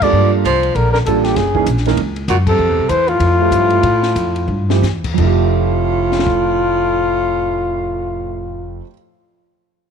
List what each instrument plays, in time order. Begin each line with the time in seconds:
Already playing: upright bass G#2
0.02 baritone saxophone F3, grand piano G3 A#3 D4 F4 A4, flugelhorn D5, kick, crash
0.12 upright bass G2
0.44 upright bass C2, baritone saxophone F3, flugelhorn C5, kick, hi-hat pedal, ride
0.63 ride
0.75 upright bass A#1, baritone saxophone D3, flugelhorn A#4, kick, ride
0.92 baritone saxophone D3, flugelhorn A#4, snare
1.06 upright bass A1, baritone saxophone D3, grand piano G3 A#3 D4 F4 A4, flugelhorn A4, kick, hi-hat pedal, ride
1.24 baritone saxophone A#2, flugelhorn G4, snare, ride
1.35 upright bass F#1, baritone saxophone C#3, flugelhorn G#4, kick, snare, ride
1.54 grand piano E3 A#3 C#4 D#4 G#4, kick
1.66 upright bass A#1, kick, hi-hat pedal, ride
1.77 snare
1.85 grand piano E3 A#3 C#4 D#4 A#4, snare, ride
1.97 upright bass C#2, kick, ride
2.16 ride
2.28 upright bass F#2, baritone saxophone A#2, flugelhorn F#4, kick, hi-hat pedal, ride
2.47 baritone saxophone C3, flugelhorn A4, kick, crash
2.59 upright bass F2
2.69 upright bass E2
2.79 upright bass C2
2.89 upright bass E2, baritone saxophone E3, flugelhorn C5, kick, hi-hat pedal, ride
3.08 baritone saxophone A2, flugelhorn F4, ride
3.20 upright bass F2, kick, ride
3.39 grand piano F3 A3 C4 G4 E5
3.51 upright bass G2, kick, hi-hat pedal, ride
3.70 ride
3.83 upright bass A2, kick, ride
4.03 snare
4.15 upright bass F2, kick, hi-hat pedal, ride
4.36 ride
4.48 upright bass G2
4.69 grand piano F3 A3 C4 E4 G4, snare
4.82 upright bass E2, snare, hi-hat pedal
5.04 kick, crash
5.14 upright bass F1, grand piano F2 F3, baritone saxophone A2, crash
5.19 grand piano A3, flugelhorn F4, kick
5.23 grand piano G4 E5
6.12 snare
6.19 snare
6.27 kick